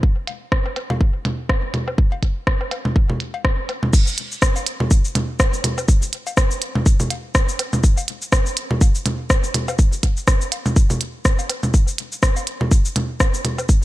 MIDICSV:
0, 0, Header, 1, 2, 480
1, 0, Start_track
1, 0, Tempo, 487805
1, 31, Time_signature, 4, 2, 24, 8
1, 13623, End_track
2, 0, Start_track
2, 0, Title_t, "Drums"
2, 30, Note_on_c, 9, 36, 108
2, 129, Note_off_c, 9, 36, 0
2, 270, Note_on_c, 9, 42, 88
2, 270, Note_on_c, 9, 56, 67
2, 368, Note_off_c, 9, 56, 0
2, 369, Note_off_c, 9, 42, 0
2, 510, Note_on_c, 9, 36, 110
2, 510, Note_on_c, 9, 37, 86
2, 609, Note_off_c, 9, 36, 0
2, 609, Note_off_c, 9, 37, 0
2, 646, Note_on_c, 9, 77, 64
2, 744, Note_off_c, 9, 77, 0
2, 750, Note_on_c, 9, 42, 82
2, 750, Note_on_c, 9, 77, 66
2, 849, Note_off_c, 9, 42, 0
2, 849, Note_off_c, 9, 77, 0
2, 886, Note_on_c, 9, 56, 66
2, 886, Note_on_c, 9, 64, 94
2, 985, Note_off_c, 9, 56, 0
2, 985, Note_off_c, 9, 64, 0
2, 990, Note_on_c, 9, 36, 106
2, 1089, Note_off_c, 9, 36, 0
2, 1230, Note_on_c, 9, 42, 85
2, 1230, Note_on_c, 9, 64, 87
2, 1328, Note_off_c, 9, 64, 0
2, 1329, Note_off_c, 9, 42, 0
2, 1470, Note_on_c, 9, 36, 109
2, 1470, Note_on_c, 9, 37, 87
2, 1470, Note_on_c, 9, 56, 64
2, 1568, Note_off_c, 9, 36, 0
2, 1568, Note_off_c, 9, 56, 0
2, 1569, Note_off_c, 9, 37, 0
2, 1710, Note_on_c, 9, 42, 89
2, 1710, Note_on_c, 9, 64, 88
2, 1808, Note_off_c, 9, 64, 0
2, 1809, Note_off_c, 9, 42, 0
2, 1846, Note_on_c, 9, 77, 63
2, 1944, Note_off_c, 9, 77, 0
2, 1950, Note_on_c, 9, 36, 113
2, 2048, Note_off_c, 9, 36, 0
2, 2086, Note_on_c, 9, 56, 65
2, 2184, Note_off_c, 9, 56, 0
2, 2190, Note_on_c, 9, 36, 53
2, 2190, Note_on_c, 9, 42, 88
2, 2288, Note_off_c, 9, 36, 0
2, 2289, Note_off_c, 9, 42, 0
2, 2430, Note_on_c, 9, 36, 105
2, 2430, Note_on_c, 9, 37, 92
2, 2529, Note_off_c, 9, 36, 0
2, 2529, Note_off_c, 9, 37, 0
2, 2566, Note_on_c, 9, 77, 62
2, 2664, Note_off_c, 9, 77, 0
2, 2670, Note_on_c, 9, 42, 86
2, 2670, Note_on_c, 9, 56, 69
2, 2670, Note_on_c, 9, 77, 64
2, 2768, Note_off_c, 9, 56, 0
2, 2768, Note_off_c, 9, 77, 0
2, 2769, Note_off_c, 9, 42, 0
2, 2806, Note_on_c, 9, 64, 98
2, 2904, Note_off_c, 9, 64, 0
2, 2910, Note_on_c, 9, 36, 111
2, 3009, Note_off_c, 9, 36, 0
2, 3046, Note_on_c, 9, 64, 83
2, 3145, Note_off_c, 9, 64, 0
2, 3151, Note_on_c, 9, 42, 88
2, 3249, Note_off_c, 9, 42, 0
2, 3286, Note_on_c, 9, 56, 67
2, 3385, Note_off_c, 9, 56, 0
2, 3390, Note_on_c, 9, 36, 113
2, 3390, Note_on_c, 9, 37, 90
2, 3489, Note_off_c, 9, 36, 0
2, 3489, Note_off_c, 9, 37, 0
2, 3630, Note_on_c, 9, 77, 66
2, 3631, Note_on_c, 9, 42, 88
2, 3729, Note_off_c, 9, 42, 0
2, 3729, Note_off_c, 9, 77, 0
2, 3767, Note_on_c, 9, 64, 93
2, 3865, Note_off_c, 9, 64, 0
2, 3870, Note_on_c, 9, 36, 126
2, 3870, Note_on_c, 9, 49, 104
2, 3870, Note_on_c, 9, 69, 69
2, 3969, Note_off_c, 9, 36, 0
2, 3969, Note_off_c, 9, 49, 0
2, 3969, Note_off_c, 9, 69, 0
2, 4006, Note_on_c, 9, 69, 48
2, 4105, Note_off_c, 9, 69, 0
2, 4111, Note_on_c, 9, 42, 98
2, 4209, Note_off_c, 9, 42, 0
2, 4247, Note_on_c, 9, 69, 31
2, 4345, Note_off_c, 9, 69, 0
2, 4350, Note_on_c, 9, 36, 117
2, 4350, Note_on_c, 9, 37, 102
2, 4350, Note_on_c, 9, 69, 69
2, 4449, Note_off_c, 9, 36, 0
2, 4449, Note_off_c, 9, 37, 0
2, 4449, Note_off_c, 9, 69, 0
2, 4486, Note_on_c, 9, 56, 69
2, 4486, Note_on_c, 9, 69, 45
2, 4585, Note_off_c, 9, 56, 0
2, 4585, Note_off_c, 9, 69, 0
2, 4590, Note_on_c, 9, 42, 97
2, 4689, Note_off_c, 9, 42, 0
2, 4726, Note_on_c, 9, 64, 101
2, 4824, Note_off_c, 9, 64, 0
2, 4830, Note_on_c, 9, 36, 124
2, 4830, Note_on_c, 9, 69, 70
2, 4929, Note_off_c, 9, 36, 0
2, 4929, Note_off_c, 9, 69, 0
2, 4966, Note_on_c, 9, 69, 43
2, 5065, Note_off_c, 9, 69, 0
2, 5070, Note_on_c, 9, 64, 104
2, 5071, Note_on_c, 9, 42, 94
2, 5168, Note_off_c, 9, 64, 0
2, 5169, Note_off_c, 9, 42, 0
2, 5310, Note_on_c, 9, 36, 126
2, 5310, Note_on_c, 9, 56, 65
2, 5311, Note_on_c, 9, 37, 102
2, 5311, Note_on_c, 9, 69, 65
2, 5408, Note_off_c, 9, 56, 0
2, 5409, Note_off_c, 9, 36, 0
2, 5409, Note_off_c, 9, 37, 0
2, 5409, Note_off_c, 9, 69, 0
2, 5446, Note_on_c, 9, 69, 44
2, 5545, Note_off_c, 9, 69, 0
2, 5550, Note_on_c, 9, 64, 96
2, 5551, Note_on_c, 9, 42, 97
2, 5648, Note_off_c, 9, 64, 0
2, 5649, Note_off_c, 9, 42, 0
2, 5686, Note_on_c, 9, 69, 31
2, 5686, Note_on_c, 9, 77, 69
2, 5784, Note_off_c, 9, 77, 0
2, 5785, Note_off_c, 9, 69, 0
2, 5790, Note_on_c, 9, 36, 125
2, 5790, Note_on_c, 9, 69, 66
2, 5889, Note_off_c, 9, 36, 0
2, 5889, Note_off_c, 9, 69, 0
2, 5926, Note_on_c, 9, 69, 47
2, 6025, Note_off_c, 9, 69, 0
2, 6030, Note_on_c, 9, 42, 93
2, 6129, Note_off_c, 9, 42, 0
2, 6166, Note_on_c, 9, 56, 68
2, 6166, Note_on_c, 9, 69, 31
2, 6265, Note_off_c, 9, 56, 0
2, 6265, Note_off_c, 9, 69, 0
2, 6270, Note_on_c, 9, 36, 126
2, 6271, Note_on_c, 9, 37, 100
2, 6271, Note_on_c, 9, 69, 63
2, 6369, Note_off_c, 9, 36, 0
2, 6369, Note_off_c, 9, 37, 0
2, 6369, Note_off_c, 9, 69, 0
2, 6407, Note_on_c, 9, 69, 45
2, 6505, Note_off_c, 9, 69, 0
2, 6511, Note_on_c, 9, 42, 100
2, 6609, Note_off_c, 9, 42, 0
2, 6646, Note_on_c, 9, 64, 99
2, 6744, Note_off_c, 9, 64, 0
2, 6751, Note_on_c, 9, 36, 127
2, 6751, Note_on_c, 9, 69, 63
2, 6849, Note_off_c, 9, 36, 0
2, 6849, Note_off_c, 9, 69, 0
2, 6886, Note_on_c, 9, 64, 91
2, 6887, Note_on_c, 9, 69, 43
2, 6985, Note_off_c, 9, 64, 0
2, 6985, Note_off_c, 9, 69, 0
2, 6991, Note_on_c, 9, 42, 98
2, 6991, Note_on_c, 9, 56, 68
2, 7089, Note_off_c, 9, 42, 0
2, 7089, Note_off_c, 9, 56, 0
2, 7231, Note_on_c, 9, 36, 125
2, 7231, Note_on_c, 9, 37, 98
2, 7231, Note_on_c, 9, 69, 64
2, 7329, Note_off_c, 9, 36, 0
2, 7329, Note_off_c, 9, 37, 0
2, 7329, Note_off_c, 9, 69, 0
2, 7367, Note_on_c, 9, 69, 46
2, 7465, Note_off_c, 9, 69, 0
2, 7471, Note_on_c, 9, 42, 105
2, 7471, Note_on_c, 9, 77, 72
2, 7569, Note_off_c, 9, 42, 0
2, 7569, Note_off_c, 9, 77, 0
2, 7607, Note_on_c, 9, 64, 100
2, 7607, Note_on_c, 9, 69, 30
2, 7705, Note_off_c, 9, 64, 0
2, 7706, Note_off_c, 9, 69, 0
2, 7711, Note_on_c, 9, 36, 127
2, 7711, Note_on_c, 9, 69, 62
2, 7809, Note_off_c, 9, 36, 0
2, 7810, Note_off_c, 9, 69, 0
2, 7847, Note_on_c, 9, 56, 69
2, 7847, Note_on_c, 9, 69, 44
2, 7945, Note_off_c, 9, 69, 0
2, 7946, Note_off_c, 9, 56, 0
2, 7951, Note_on_c, 9, 42, 102
2, 8049, Note_off_c, 9, 42, 0
2, 8087, Note_on_c, 9, 69, 31
2, 8186, Note_off_c, 9, 69, 0
2, 8191, Note_on_c, 9, 36, 127
2, 8191, Note_on_c, 9, 37, 103
2, 8191, Note_on_c, 9, 69, 62
2, 8289, Note_off_c, 9, 36, 0
2, 8290, Note_off_c, 9, 37, 0
2, 8290, Note_off_c, 9, 69, 0
2, 8327, Note_on_c, 9, 69, 42
2, 8425, Note_off_c, 9, 69, 0
2, 8431, Note_on_c, 9, 42, 96
2, 8529, Note_off_c, 9, 42, 0
2, 8567, Note_on_c, 9, 64, 99
2, 8666, Note_off_c, 9, 64, 0
2, 8671, Note_on_c, 9, 36, 127
2, 8671, Note_on_c, 9, 56, 65
2, 8671, Note_on_c, 9, 69, 63
2, 8769, Note_off_c, 9, 36, 0
2, 8770, Note_off_c, 9, 56, 0
2, 8770, Note_off_c, 9, 69, 0
2, 8807, Note_on_c, 9, 69, 42
2, 8905, Note_off_c, 9, 69, 0
2, 8911, Note_on_c, 9, 42, 101
2, 8911, Note_on_c, 9, 64, 99
2, 9010, Note_off_c, 9, 42, 0
2, 9010, Note_off_c, 9, 64, 0
2, 9151, Note_on_c, 9, 36, 127
2, 9151, Note_on_c, 9, 37, 97
2, 9151, Note_on_c, 9, 69, 64
2, 9249, Note_off_c, 9, 36, 0
2, 9250, Note_off_c, 9, 37, 0
2, 9250, Note_off_c, 9, 69, 0
2, 9287, Note_on_c, 9, 69, 41
2, 9386, Note_off_c, 9, 69, 0
2, 9391, Note_on_c, 9, 42, 101
2, 9391, Note_on_c, 9, 64, 99
2, 9490, Note_off_c, 9, 42, 0
2, 9490, Note_off_c, 9, 64, 0
2, 9527, Note_on_c, 9, 69, 30
2, 9528, Note_on_c, 9, 56, 68
2, 9528, Note_on_c, 9, 77, 75
2, 9626, Note_off_c, 9, 56, 0
2, 9626, Note_off_c, 9, 69, 0
2, 9626, Note_off_c, 9, 77, 0
2, 9631, Note_on_c, 9, 36, 122
2, 9631, Note_on_c, 9, 69, 63
2, 9729, Note_off_c, 9, 36, 0
2, 9730, Note_off_c, 9, 69, 0
2, 9767, Note_on_c, 9, 69, 42
2, 9866, Note_off_c, 9, 69, 0
2, 9871, Note_on_c, 9, 36, 65
2, 9871, Note_on_c, 9, 42, 94
2, 9969, Note_off_c, 9, 36, 0
2, 9969, Note_off_c, 9, 42, 0
2, 10007, Note_on_c, 9, 69, 28
2, 10105, Note_off_c, 9, 69, 0
2, 10111, Note_on_c, 9, 36, 127
2, 10111, Note_on_c, 9, 37, 92
2, 10111, Note_on_c, 9, 69, 64
2, 10209, Note_off_c, 9, 36, 0
2, 10209, Note_off_c, 9, 37, 0
2, 10209, Note_off_c, 9, 69, 0
2, 10247, Note_on_c, 9, 69, 40
2, 10345, Note_off_c, 9, 69, 0
2, 10351, Note_on_c, 9, 42, 97
2, 10351, Note_on_c, 9, 56, 63
2, 10449, Note_off_c, 9, 42, 0
2, 10450, Note_off_c, 9, 56, 0
2, 10486, Note_on_c, 9, 64, 99
2, 10487, Note_on_c, 9, 69, 26
2, 10585, Note_off_c, 9, 64, 0
2, 10585, Note_off_c, 9, 69, 0
2, 10591, Note_on_c, 9, 36, 127
2, 10591, Note_on_c, 9, 69, 62
2, 10689, Note_off_c, 9, 36, 0
2, 10689, Note_off_c, 9, 69, 0
2, 10726, Note_on_c, 9, 64, 86
2, 10727, Note_on_c, 9, 69, 42
2, 10825, Note_off_c, 9, 64, 0
2, 10825, Note_off_c, 9, 69, 0
2, 10831, Note_on_c, 9, 42, 96
2, 10930, Note_off_c, 9, 42, 0
2, 11071, Note_on_c, 9, 36, 127
2, 11072, Note_on_c, 9, 37, 92
2, 11072, Note_on_c, 9, 69, 62
2, 11169, Note_off_c, 9, 36, 0
2, 11170, Note_off_c, 9, 37, 0
2, 11170, Note_off_c, 9, 69, 0
2, 11206, Note_on_c, 9, 56, 62
2, 11207, Note_on_c, 9, 69, 40
2, 11304, Note_off_c, 9, 56, 0
2, 11305, Note_off_c, 9, 69, 0
2, 11311, Note_on_c, 9, 42, 105
2, 11311, Note_on_c, 9, 77, 73
2, 11409, Note_off_c, 9, 77, 0
2, 11410, Note_off_c, 9, 42, 0
2, 11446, Note_on_c, 9, 64, 91
2, 11447, Note_on_c, 9, 69, 29
2, 11545, Note_off_c, 9, 64, 0
2, 11545, Note_off_c, 9, 69, 0
2, 11551, Note_on_c, 9, 36, 123
2, 11551, Note_on_c, 9, 69, 63
2, 11649, Note_off_c, 9, 36, 0
2, 11650, Note_off_c, 9, 69, 0
2, 11688, Note_on_c, 9, 69, 44
2, 11786, Note_off_c, 9, 69, 0
2, 11792, Note_on_c, 9, 42, 93
2, 11890, Note_off_c, 9, 42, 0
2, 11928, Note_on_c, 9, 69, 29
2, 12026, Note_off_c, 9, 69, 0
2, 12031, Note_on_c, 9, 36, 123
2, 12031, Note_on_c, 9, 37, 94
2, 12031, Note_on_c, 9, 69, 63
2, 12129, Note_off_c, 9, 36, 0
2, 12130, Note_off_c, 9, 37, 0
2, 12130, Note_off_c, 9, 69, 0
2, 12166, Note_on_c, 9, 56, 60
2, 12167, Note_on_c, 9, 69, 43
2, 12265, Note_off_c, 9, 56, 0
2, 12266, Note_off_c, 9, 69, 0
2, 12271, Note_on_c, 9, 42, 95
2, 12369, Note_off_c, 9, 42, 0
2, 12407, Note_on_c, 9, 64, 96
2, 12505, Note_off_c, 9, 64, 0
2, 12511, Note_on_c, 9, 36, 125
2, 12511, Note_on_c, 9, 69, 65
2, 12609, Note_off_c, 9, 36, 0
2, 12610, Note_off_c, 9, 69, 0
2, 12647, Note_on_c, 9, 69, 42
2, 12746, Note_off_c, 9, 69, 0
2, 12751, Note_on_c, 9, 42, 92
2, 12751, Note_on_c, 9, 64, 91
2, 12850, Note_off_c, 9, 42, 0
2, 12850, Note_off_c, 9, 64, 0
2, 12991, Note_on_c, 9, 36, 121
2, 12991, Note_on_c, 9, 37, 94
2, 12991, Note_on_c, 9, 56, 63
2, 12991, Note_on_c, 9, 69, 60
2, 13089, Note_off_c, 9, 36, 0
2, 13089, Note_off_c, 9, 56, 0
2, 13090, Note_off_c, 9, 37, 0
2, 13090, Note_off_c, 9, 69, 0
2, 13127, Note_on_c, 9, 69, 44
2, 13226, Note_off_c, 9, 69, 0
2, 13231, Note_on_c, 9, 42, 100
2, 13231, Note_on_c, 9, 64, 93
2, 13329, Note_off_c, 9, 64, 0
2, 13330, Note_off_c, 9, 42, 0
2, 13367, Note_on_c, 9, 69, 29
2, 13367, Note_on_c, 9, 77, 73
2, 13465, Note_off_c, 9, 77, 0
2, 13466, Note_off_c, 9, 69, 0
2, 13471, Note_on_c, 9, 36, 118
2, 13471, Note_on_c, 9, 69, 65
2, 13569, Note_off_c, 9, 36, 0
2, 13570, Note_off_c, 9, 69, 0
2, 13623, End_track
0, 0, End_of_file